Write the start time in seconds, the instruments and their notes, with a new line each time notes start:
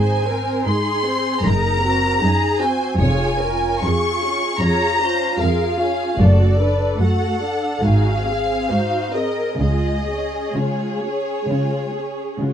Already playing: double bass section G#1, cello section G#2, viola section D#4 G#4, violin section C5 G#5
0.28 viola section C4 C5, violin section A#4
0.67 cello section G#2, viola section D#4 G#4, violin section G#4 C6
1.06 viola section C4 C5
1.43 double bass section F#1, cello section F#2, viola section D#4 G#4, violin section A#4 A#5
1.82 viola section C4 F#4
2.22 cello section F#2, viola section D#4 G#4, violin section G#4
2.60 viola section C4 F#4, violin section C5 G#5
2.98 double bass section F1, cello section F2, viola section F4 G#4, violin section C#5 G#5
3.40 viola section C#4 F4, violin section A#4
3.82 cello section F2, viola section F4 G#4, violin section G#4 C#6
4.23 viola section C#4 F4
4.60 cello section F2, viola section F4 G#4, violin section C#5 A#5
5.00 viola section C#4 F4, violin section C5
5.38 cello section F2, viola section F4 G#4, violin section A#4 F5
5.78 viola section C#4 F4, violin section G#4
6.19 double bass section F#1, cello section F#2, viola section A3 F#4, violin section A4 D5
6.58 viola section D4 A4, violin section B4
6.99 cello section F#2, viola section A3 F#4, violin section A4 F#5
7.41 viola section D4 A4
7.83 double bass section G#1, cello section G#2, viola section D#4 F#4, violin section G#4 F5
8.26 viola section C4 G#4
8.70 cello section G#2, viola section D#4 F#4, violin section C5
9.14 viola section C4 G#4, violin section A#4 D#5
9.59 double bass section C#2, cello section C#3, viola section G#3 F4, violin section G#4 D#5
10.08 viola section C#4 G#4
10.55 cello section C#3, viola section G#3 F4, violin section C#5
11.03 viola section C#4 G#4
11.49 cello section C#3, viola section G#3 F4
11.94 viola section C#4 G#4
12.39 cello section C#3, viola section G#3 F4 F#4